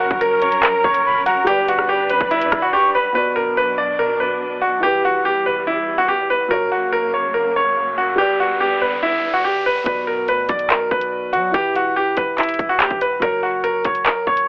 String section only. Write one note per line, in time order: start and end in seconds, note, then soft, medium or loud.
0.00 1.45 F#3 medium
0.00 1.45 C#4 medium
0.00 1.45 A#4 medium
1.47 3.13 G3 medium
1.47 3.13 D4 medium
1.47 3.13 B4 medium
3.15 4.81 B2 medium
3.15 4.81 F#3 medium
3.15 4.81 D4 medium
4.83 6.49 E2 medium
4.83 6.49 B2 medium
4.83 6.49 G3 medium
6.51 8.17 F#2 medium
6.51 8.17 C#3 medium
6.51 8.17 A#3 medium
8.19 9.85 G2 medium
8.19 9.85 D3 medium
8.19 9.85 B3 medium